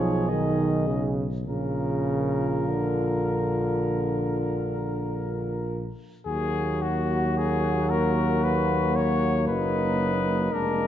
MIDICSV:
0, 0, Header, 1, 6, 480
1, 0, Start_track
1, 0, Key_signature, -6, "minor"
1, 0, Tempo, 1160542
1, 607, Time_signature, 4, 2, 24, 8
1, 607, Tempo, 1217039
1, 2047, Tempo, 1153846
1, 2527, Tempo, 1083032
1, 3487, Tempo, 1045296
1, 4604, End_track
2, 0, Start_track
2, 0, Title_t, "Cornet"
2, 0, Program_c, 0, 56
2, 0, Note_on_c, 0, 73, 53
2, 120, Note_on_c, 0, 75, 47
2, 127, Note_off_c, 0, 73, 0
2, 477, Note_off_c, 0, 75, 0
2, 607, Note_on_c, 0, 70, 45
2, 2374, Note_off_c, 0, 70, 0
2, 2522, Note_on_c, 0, 68, 72
2, 2771, Note_on_c, 0, 66, 63
2, 2778, Note_off_c, 0, 68, 0
2, 3017, Note_on_c, 0, 68, 69
2, 3024, Note_off_c, 0, 66, 0
2, 3249, Note_on_c, 0, 70, 67
2, 3256, Note_off_c, 0, 68, 0
2, 3489, Note_on_c, 0, 71, 68
2, 3496, Note_off_c, 0, 70, 0
2, 3725, Note_on_c, 0, 73, 71
2, 3732, Note_off_c, 0, 71, 0
2, 3962, Note_off_c, 0, 73, 0
2, 3965, Note_on_c, 0, 71, 74
2, 4445, Note_on_c, 0, 70, 70
2, 4452, Note_off_c, 0, 71, 0
2, 4604, Note_off_c, 0, 70, 0
2, 4604, End_track
3, 0, Start_track
3, 0, Title_t, "Flugelhorn"
3, 0, Program_c, 1, 56
3, 0, Note_on_c, 1, 68, 52
3, 478, Note_off_c, 1, 68, 0
3, 609, Note_on_c, 1, 70, 41
3, 2375, Note_off_c, 1, 70, 0
3, 2528, Note_on_c, 1, 66, 52
3, 3949, Note_off_c, 1, 66, 0
3, 3972, Note_on_c, 1, 63, 50
3, 4451, Note_on_c, 1, 62, 54
3, 4458, Note_off_c, 1, 63, 0
3, 4604, Note_off_c, 1, 62, 0
3, 4604, End_track
4, 0, Start_track
4, 0, Title_t, "Euphonium"
4, 0, Program_c, 2, 58
4, 0, Note_on_c, 2, 63, 48
4, 120, Note_off_c, 2, 63, 0
4, 123, Note_on_c, 2, 63, 45
4, 471, Note_off_c, 2, 63, 0
4, 607, Note_on_c, 2, 65, 52
4, 2374, Note_off_c, 2, 65, 0
4, 2528, Note_on_c, 2, 58, 60
4, 4426, Note_off_c, 2, 58, 0
4, 4447, Note_on_c, 2, 58, 56
4, 4604, Note_off_c, 2, 58, 0
4, 4604, End_track
5, 0, Start_track
5, 0, Title_t, "Trombone"
5, 0, Program_c, 3, 57
5, 0, Note_on_c, 3, 53, 61
5, 121, Note_on_c, 3, 51, 62
5, 127, Note_off_c, 3, 53, 0
5, 362, Note_on_c, 3, 49, 59
5, 368, Note_off_c, 3, 51, 0
5, 520, Note_off_c, 3, 49, 0
5, 607, Note_on_c, 3, 49, 70
5, 1091, Note_on_c, 3, 50, 51
5, 1097, Note_off_c, 3, 49, 0
5, 2291, Note_off_c, 3, 50, 0
5, 2526, Note_on_c, 3, 54, 58
5, 4425, Note_off_c, 3, 54, 0
5, 4440, Note_on_c, 3, 56, 51
5, 4604, Note_off_c, 3, 56, 0
5, 4604, End_track
6, 0, Start_track
6, 0, Title_t, "Tuba"
6, 0, Program_c, 4, 58
6, 0, Note_on_c, 4, 35, 53
6, 605, Note_off_c, 4, 35, 0
6, 607, Note_on_c, 4, 34, 50
6, 2374, Note_off_c, 4, 34, 0
6, 2525, Note_on_c, 4, 39, 58
6, 3966, Note_on_c, 4, 30, 54
6, 3973, Note_off_c, 4, 39, 0
6, 4443, Note_off_c, 4, 30, 0
6, 4445, Note_on_c, 4, 29, 58
6, 4604, Note_off_c, 4, 29, 0
6, 4604, End_track
0, 0, End_of_file